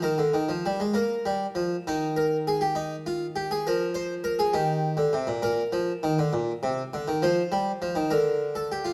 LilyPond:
<<
  \new Staff \with { instrumentName = "Harpsichord" } { \time 6/8 \key ees \major \tempo 4. = 67 bes'4. bes'4. | ees'8 bes'8 aes'16 g'16 ees'8 f'8 g'16 aes'16 | bes'8 c''8 bes'16 aes'16 g'4. | bes'2. |
c''4. bes'8. a'16 g'16 f'16 | }
  \new Staff \with { instrumentName = "Harpsichord" } { \clef bass \time 6/8 \key ees \major ees16 d16 ees16 f16 g16 aes16 bes8 g8 f8 | ees2. | f4. ees8. d16 c16 bes,16 | bes,8 f8 ees16 d16 bes,8 c8 d16 ees16 |
f8 g8 f16 ees16 d4. | }
>>